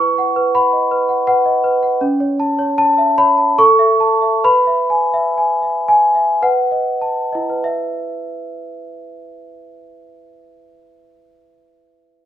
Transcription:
celesta
Already playing: E4 C#6
0.00 B4
0.18 F#5
0.36 B4
0.55 F#5 B5
0.73 D#5
0.91 B4
1.09 F#5
1.27 B4 F#5
1.46 D#5
1.64 B4
1.83 F#5
2.01 C#4
2.20 C#5
2.40 A5
2.59 C#5
2.78 A5
2.98 E5
3.18 C#5 B5
3.38 A5
3.58 A4 C#6
3.79 E5
4.00 A5
4.22 E5
4.44 B4 B5
4.67 E5
4.90 G#5
5.14 E5
5.38 G#5
5.63 E5
5.88 G#5
6.15 E5
6.42 B4 F#5
6.71 D#5
7.01 A5
7.33 E4 D#5
7.50 B4
7.64 E5

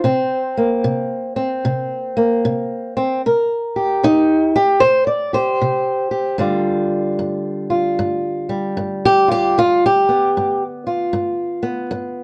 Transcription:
steel-string acoustic guitar
Already playing: C5
0.04 C3 C4
0.57 A#3
0.84 C3
1.36 C4
1.65 C3
2.17 A#3
2.45 C3
2.97 C4
3.26 C3 A#4
3.76 G4
4.03 C3 D#4
4.56 G4
4.81 C3 C5
5.07 D5
5.33 G4 C5
5.62 C3
6.11 G4
6.38 G2 D3 G3 F4
7.19 G2
7.70 F4
7.99 G2
8.49 G3
8.77 G2
9.05 G4
9.28 F4 G4
9.57 G2 F4
9.85 G4
10.08 B3
10.37 G2
10.87 F4
11.13 G2
11.63 B3
11.91 G2

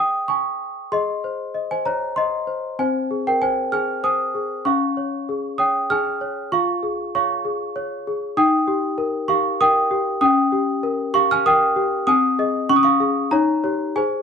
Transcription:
celesta
Already playing: G#4 C5 D#5 G5 G#5 D#6
0.28 G#5 C#6
0.92 G#4 D#5 C6
1.24 C5
1.54 D#5
1.71 C5 G#5
1.86 C5 C#5 A#5
2.16 D#5 C6
2.47 C5
2.79 C4 C5 G#5
3.11 G#4
3.27 A#4 G5
3.42 C5 G#5
3.72 G#4 G#5 F6
4.03 C5 G#5 D#6
4.35 G#4
4.65 C#4 F5 C#6
4.97 C#5
5.29 G#4
5.58 C#5 G5 D#6
5.90 G#4 G#5 F6
6.21 C#5
6.52 F4 F5 C#6
6.83 G#4
7.15 C#5 F5 C#6
7.45 G#4
7.76 C#5
8.07 G#4
8.37 D#4 G5 D#6
8.67 G4
8.98 A#4
9.28 G4 F5 C#6
9.61 A#4 G5 D#6
9.91 G4
10.21 C#4 G5 D#6
10.52 G4
10.83 A#4
11.14 G4 F5 C#6
11.31 G#5 F6
11.46 A#4 G5 D#6
11.76 G4
12.07 C4 G#5 D#6
12.39 G#4 D#5
12.69 C#4 C#6
12.76 D#6
12.83 F5 C#6
13.00 G#4 F5
13.31 D#4 C#5 A#5
13.64 G4 C#5
13.96 G#4 C5 G#5

